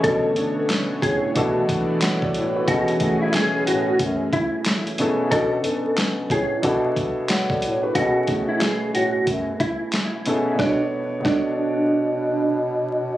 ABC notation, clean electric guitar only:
X:1
M:4/4
L:1/16
Q:"Swing 16ths" 1/4=91
K:Bdor
V:1 name="Clean electric guitar"
A4 z2 G z8 z | F3 E G2 F2 z2 E z4 z | A4 z2 G z8 z | F3 E G2 F2 z2 E z4 z |
D2 z2 D8 z4 |]